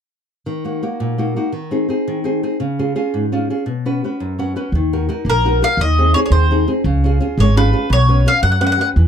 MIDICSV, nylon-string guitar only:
0, 0, Header, 1, 2, 480
1, 0, Start_track
1, 0, Key_signature, -6, "minor"
1, 0, Tempo, 354191
1, 634, Time_signature, 6, 3, 24, 8
1, 12301, End_track
2, 0, Start_track
2, 0, Title_t, "Nylon-string guitar"
2, 0, Program_c, 0, 24
2, 627, Note_on_c, 0, 51, 46
2, 874, Note_on_c, 0, 58, 30
2, 880, Note_on_c, 0, 63, 27
2, 888, Note_on_c, 0, 66, 34
2, 1105, Note_off_c, 0, 58, 0
2, 1108, Note_off_c, 0, 63, 0
2, 1109, Note_off_c, 0, 51, 0
2, 1112, Note_off_c, 0, 66, 0
2, 1120, Note_on_c, 0, 58, 36
2, 1126, Note_on_c, 0, 63, 33
2, 1128, Note_on_c, 0, 66, 33
2, 1356, Note_on_c, 0, 46, 52
2, 1519, Note_off_c, 0, 58, 0
2, 1521, Note_off_c, 0, 63, 0
2, 1524, Note_off_c, 0, 66, 0
2, 1602, Note_on_c, 0, 58, 38
2, 1608, Note_on_c, 0, 63, 30
2, 1614, Note_on_c, 0, 66, 37
2, 1830, Note_off_c, 0, 58, 0
2, 1837, Note_off_c, 0, 46, 0
2, 1837, Note_off_c, 0, 66, 0
2, 1844, Note_off_c, 0, 63, 0
2, 1846, Note_on_c, 0, 58, 31
2, 1854, Note_on_c, 0, 66, 39
2, 1860, Note_on_c, 0, 63, 27
2, 2035, Note_off_c, 0, 58, 0
2, 2040, Note_off_c, 0, 66, 0
2, 2044, Note_off_c, 0, 63, 0
2, 2066, Note_on_c, 0, 51, 44
2, 2317, Note_on_c, 0, 60, 32
2, 2326, Note_on_c, 0, 63, 34
2, 2330, Note_on_c, 0, 68, 39
2, 2540, Note_off_c, 0, 60, 0
2, 2547, Note_off_c, 0, 51, 0
2, 2554, Note_off_c, 0, 68, 0
2, 2555, Note_off_c, 0, 63, 0
2, 2556, Note_on_c, 0, 60, 36
2, 2571, Note_on_c, 0, 63, 33
2, 2574, Note_on_c, 0, 68, 40
2, 2813, Note_on_c, 0, 51, 55
2, 2949, Note_off_c, 0, 60, 0
2, 2958, Note_off_c, 0, 63, 0
2, 2958, Note_off_c, 0, 68, 0
2, 3037, Note_on_c, 0, 60, 39
2, 3046, Note_on_c, 0, 63, 38
2, 3054, Note_on_c, 0, 68, 41
2, 3275, Note_off_c, 0, 51, 0
2, 3278, Note_off_c, 0, 63, 0
2, 3283, Note_off_c, 0, 60, 0
2, 3289, Note_off_c, 0, 68, 0
2, 3296, Note_on_c, 0, 63, 31
2, 3299, Note_on_c, 0, 60, 38
2, 3305, Note_on_c, 0, 68, 36
2, 3473, Note_off_c, 0, 63, 0
2, 3476, Note_off_c, 0, 60, 0
2, 3480, Note_off_c, 0, 68, 0
2, 3522, Note_on_c, 0, 49, 50
2, 3784, Note_on_c, 0, 65, 35
2, 3785, Note_on_c, 0, 61, 36
2, 3786, Note_on_c, 0, 68, 41
2, 3987, Note_off_c, 0, 49, 0
2, 3990, Note_off_c, 0, 68, 0
2, 3991, Note_off_c, 0, 61, 0
2, 4000, Note_off_c, 0, 65, 0
2, 4005, Note_on_c, 0, 61, 35
2, 4010, Note_on_c, 0, 68, 43
2, 4016, Note_on_c, 0, 65, 35
2, 4252, Note_on_c, 0, 44, 42
2, 4395, Note_off_c, 0, 61, 0
2, 4395, Note_off_c, 0, 68, 0
2, 4400, Note_off_c, 0, 65, 0
2, 4503, Note_on_c, 0, 61, 37
2, 4508, Note_on_c, 0, 65, 36
2, 4517, Note_on_c, 0, 68, 35
2, 4716, Note_off_c, 0, 44, 0
2, 4730, Note_off_c, 0, 61, 0
2, 4736, Note_off_c, 0, 65, 0
2, 4737, Note_off_c, 0, 68, 0
2, 4746, Note_on_c, 0, 61, 31
2, 4750, Note_on_c, 0, 65, 30
2, 4756, Note_on_c, 0, 68, 34
2, 4921, Note_off_c, 0, 61, 0
2, 4924, Note_off_c, 0, 65, 0
2, 4925, Note_off_c, 0, 68, 0
2, 4959, Note_on_c, 0, 47, 50
2, 5225, Note_on_c, 0, 61, 39
2, 5231, Note_on_c, 0, 66, 29
2, 5235, Note_on_c, 0, 71, 36
2, 5430, Note_off_c, 0, 47, 0
2, 5461, Note_off_c, 0, 61, 0
2, 5468, Note_off_c, 0, 66, 0
2, 5477, Note_on_c, 0, 61, 36
2, 5480, Note_off_c, 0, 71, 0
2, 5484, Note_on_c, 0, 66, 30
2, 5496, Note_on_c, 0, 71, 32
2, 5696, Note_on_c, 0, 42, 48
2, 5861, Note_off_c, 0, 61, 0
2, 5865, Note_off_c, 0, 66, 0
2, 5872, Note_off_c, 0, 71, 0
2, 5944, Note_on_c, 0, 61, 34
2, 5954, Note_on_c, 0, 66, 34
2, 5955, Note_on_c, 0, 78, 48
2, 5957, Note_on_c, 0, 71, 38
2, 6162, Note_off_c, 0, 61, 0
2, 6163, Note_off_c, 0, 78, 0
2, 6169, Note_off_c, 0, 42, 0
2, 6169, Note_off_c, 0, 66, 0
2, 6170, Note_off_c, 0, 71, 0
2, 6178, Note_on_c, 0, 61, 27
2, 6184, Note_on_c, 0, 66, 28
2, 6188, Note_on_c, 0, 71, 40
2, 6194, Note_off_c, 0, 71, 0
2, 6194, Note_on_c, 0, 71, 33
2, 6364, Note_off_c, 0, 61, 0
2, 6369, Note_off_c, 0, 66, 0
2, 6374, Note_off_c, 0, 71, 0
2, 6438, Note_on_c, 0, 51, 55
2, 6683, Note_on_c, 0, 63, 36
2, 6683, Note_on_c, 0, 66, 31
2, 6685, Note_on_c, 0, 70, 41
2, 6877, Note_off_c, 0, 63, 0
2, 6883, Note_off_c, 0, 66, 0
2, 6891, Note_off_c, 0, 70, 0
2, 6893, Note_on_c, 0, 63, 45
2, 6899, Note_on_c, 0, 66, 39
2, 6901, Note_off_c, 0, 51, 0
2, 6907, Note_on_c, 0, 70, 46
2, 7129, Note_on_c, 0, 58, 51
2, 7288, Note_off_c, 0, 63, 0
2, 7292, Note_off_c, 0, 66, 0
2, 7296, Note_off_c, 0, 70, 0
2, 7388, Note_on_c, 0, 63, 39
2, 7392, Note_on_c, 0, 66, 39
2, 7398, Note_on_c, 0, 70, 46
2, 7597, Note_off_c, 0, 63, 0
2, 7598, Note_off_c, 0, 66, 0
2, 7605, Note_off_c, 0, 58, 0
2, 7610, Note_off_c, 0, 70, 0
2, 7612, Note_on_c, 0, 63, 41
2, 7617, Note_on_c, 0, 66, 35
2, 7626, Note_on_c, 0, 70, 42
2, 7801, Note_off_c, 0, 63, 0
2, 7802, Note_off_c, 0, 66, 0
2, 7809, Note_off_c, 0, 70, 0
2, 7855, Note_on_c, 0, 51, 52
2, 8111, Note_on_c, 0, 60, 45
2, 8114, Note_on_c, 0, 63, 35
2, 8117, Note_on_c, 0, 68, 39
2, 8318, Note_off_c, 0, 60, 0
2, 8325, Note_off_c, 0, 51, 0
2, 8331, Note_off_c, 0, 63, 0
2, 8332, Note_off_c, 0, 68, 0
2, 8335, Note_on_c, 0, 60, 37
2, 8346, Note_on_c, 0, 63, 37
2, 8351, Note_on_c, 0, 68, 47
2, 8567, Note_on_c, 0, 51, 50
2, 8724, Note_off_c, 0, 60, 0
2, 8731, Note_off_c, 0, 63, 0
2, 8732, Note_off_c, 0, 68, 0
2, 8818, Note_on_c, 0, 60, 42
2, 8826, Note_on_c, 0, 63, 44
2, 8835, Note_on_c, 0, 68, 46
2, 9028, Note_off_c, 0, 63, 0
2, 9032, Note_off_c, 0, 60, 0
2, 9034, Note_off_c, 0, 68, 0
2, 9038, Note_off_c, 0, 51, 0
2, 9045, Note_on_c, 0, 63, 41
2, 9047, Note_on_c, 0, 60, 44
2, 9054, Note_on_c, 0, 68, 50
2, 9231, Note_off_c, 0, 63, 0
2, 9234, Note_off_c, 0, 60, 0
2, 9234, Note_off_c, 0, 68, 0
2, 9288, Note_on_c, 0, 49, 64
2, 9542, Note_on_c, 0, 61, 44
2, 9557, Note_on_c, 0, 65, 41
2, 9565, Note_on_c, 0, 68, 46
2, 9748, Note_off_c, 0, 61, 0
2, 9751, Note_off_c, 0, 49, 0
2, 9756, Note_off_c, 0, 65, 0
2, 9764, Note_off_c, 0, 68, 0
2, 9764, Note_on_c, 0, 61, 46
2, 9772, Note_on_c, 0, 65, 38
2, 9780, Note_on_c, 0, 68, 50
2, 10007, Note_on_c, 0, 56, 57
2, 10148, Note_off_c, 0, 61, 0
2, 10153, Note_off_c, 0, 65, 0
2, 10157, Note_off_c, 0, 68, 0
2, 10252, Note_on_c, 0, 61, 52
2, 10262, Note_on_c, 0, 65, 44
2, 10267, Note_on_c, 0, 68, 51
2, 10454, Note_off_c, 0, 65, 0
2, 10461, Note_off_c, 0, 61, 0
2, 10464, Note_off_c, 0, 68, 0
2, 10466, Note_off_c, 0, 56, 0
2, 10470, Note_on_c, 0, 65, 37
2, 10477, Note_on_c, 0, 61, 42
2, 10484, Note_on_c, 0, 68, 43
2, 10655, Note_off_c, 0, 65, 0
2, 10660, Note_off_c, 0, 61, 0
2, 10661, Note_off_c, 0, 68, 0
2, 10703, Note_on_c, 0, 47, 66
2, 10957, Note_on_c, 0, 61, 39
2, 10958, Note_on_c, 0, 66, 38
2, 10969, Note_on_c, 0, 71, 46
2, 11174, Note_off_c, 0, 47, 0
2, 11178, Note_off_c, 0, 61, 0
2, 11181, Note_off_c, 0, 66, 0
2, 11193, Note_off_c, 0, 71, 0
2, 11193, Note_on_c, 0, 61, 45
2, 11198, Note_on_c, 0, 66, 31
2, 11209, Note_on_c, 0, 71, 48
2, 11435, Note_on_c, 0, 54, 50
2, 11582, Note_off_c, 0, 61, 0
2, 11584, Note_off_c, 0, 66, 0
2, 11591, Note_off_c, 0, 71, 0
2, 11667, Note_on_c, 0, 71, 47
2, 11668, Note_on_c, 0, 61, 39
2, 11673, Note_on_c, 0, 66, 38
2, 11885, Note_off_c, 0, 61, 0
2, 11898, Note_off_c, 0, 66, 0
2, 11902, Note_off_c, 0, 71, 0
2, 11902, Note_on_c, 0, 61, 35
2, 11903, Note_off_c, 0, 54, 0
2, 11913, Note_on_c, 0, 66, 31
2, 11920, Note_on_c, 0, 71, 37
2, 12093, Note_off_c, 0, 61, 0
2, 12100, Note_off_c, 0, 66, 0
2, 12103, Note_off_c, 0, 71, 0
2, 12155, Note_on_c, 0, 52, 51
2, 12301, Note_off_c, 0, 52, 0
2, 12301, End_track
0, 0, End_of_file